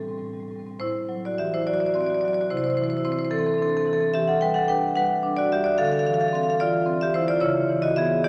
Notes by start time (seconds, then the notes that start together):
Already playing: A2
0.01 G3 C4
0.08 A2 G3 C4
0.18 A2 G3 C4
0.26 A2 G3 C4
0.33 G3 C4
0.40 A2 G3 C4
0.48 A2 G3 C4
0.56 G3 C4
0.60 A2 G3
0.67 A2 C4
0.71 G3
0.79 A2 E4 C5
1.09 F#3
1.25 F#4 D5
1.38 E3 G4 E5
1.54 E4 C5
1.66 F#3 F#4 D5
1.73 F#4 D5
1.80 F#4 D5
1.86 F#4 D5
1.94 C4 F#4 D5
2.01 F#4 D5
2.06 F#4 D5
2.14 F#4 D5
2.21 F#3 D5
2.25 F#4 D5
2.33 F#4 D5
2.41 F#4 D5
2.50 C3 E4 C5
2.57 E4 C5
2.64 E4 C5
2.70 C5
2.74 E3 E4 C5
2.82 E4 C5
2.89 E4 C5
2.97 E4 C5
3.05 C4 E4 C5
3.12 E4 C5
3.19 E4 C5
3.25 C5
3.31 E3 C4 A4
3.39 C4 A4
3.46 C4 A4
3.54 C4 A4
3.58 C4 D4
3.62 A4
3.69 C4 A4
3.77 C4 A4
3.85 E3 C4 A4
3.93 C4 A4
4.00 C4 A4
4.14 E3 G4 E5
4.28 A4 F#5
4.40 G3 B4 G5
4.54 A4 F#5
4.68 D4 B4 G5
4.95 G3 B4 F#5
5.23 D4
5.37 F#4 D5
5.52 G3 G4 E5
5.64 F#4 D5
5.78 D3 A4 F5
5.85 A4 F5
5.92 A4 F5
5.99 A4 F5
6.05 E3 A4 F5
6.13 A4 F5
6.21 A4 F5
6.28 A4 F5
6.33 C4 A4 F5
6.41 A4 F5
6.49 A4 F5
6.60 E3 F4 D5
6.86 C4
7.01 G4 E5
7.14 E3 E4 C5
7.28 F4 D5
7.40 C#3 E4 C#5
7.69 E3
7.82 F#4 D#5
7.96 E3 B3 G#4 E5
8.24 E3 G4 D5